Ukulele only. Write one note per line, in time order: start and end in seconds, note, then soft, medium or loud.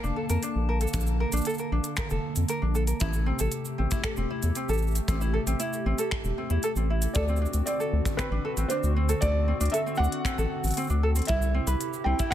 0.03 0.15 D4 medium
0.16 0.24 A4 medium
0.30 0.41 A#4 medium
0.43 0.67 D4 medium
0.69 0.80 A#4 medium
0.81 1.19 A4 medium
1.20 1.32 A#4 medium
1.33 1.45 D4 medium
1.47 1.54 A4 medium
1.59 1.71 A#4 medium
1.72 1.96 D4 medium
1.98 2.09 A#4 medium
2.11 2.48 A4 medium
2.49 2.61 A#4 medium
2.62 2.74 D4 medium
2.75 2.82 A4 medium
2.87 2.99 A#4 medium
3.01 3.25 E4 medium
3.26 3.38 C4 medium
3.40 3.77 A4 medium
3.78 3.90 C4 medium
3.91 4.03 E4 medium
4.04 4.11 A4 medium
4.17 4.29 C4 medium
4.30 4.55 E4 medium
4.56 4.68 C4 medium
4.69 5.07 A4 medium
5.08 5.20 C4 medium
5.21 5.33 E4 medium
5.34 5.41 A4 medium
5.47 5.58 C4 medium
5.60 5.84 E4 medium
5.86 5.97 C4 medium
5.99 6.36 A4 medium
6.38 6.49 C4 medium
6.50 6.62 E4 medium
6.64 6.71 A4 medium
6.77 6.88 C4 medium
6.90 7.14 E4 medium
7.16 7.23 A4 medium
7.29 7.40 C4 medium
7.42 7.66 D4 medium
7.67 7.78 C4 medium
7.80 8.17 A4 medium
8.19 8.30 C4 medium
8.32 8.43 D4 medium
8.45 8.52 A4 medium
8.58 8.69 C4 medium
8.71 8.95 D4 medium
8.96 9.08 C4 medium
9.09 9.46 A4 medium
9.48 9.59 C4 medium
9.60 9.72 D4 medium
9.73 9.81 A4 medium
9.86 9.98 C4 medium
9.99 10.24 D4 medium
10.25 10.37 C4 medium
10.38 10.76 A4 medium
10.77 10.89 C4 medium
10.90 11.01 D4 medium
11.03 11.10 A4 medium
11.16 11.27 C4 medium
11.29 11.53 E4 medium
11.54 11.66 C4 medium
11.67 12.05 B4 medium
12.06 12.18 C4 medium
12.19 12.31 E4 medium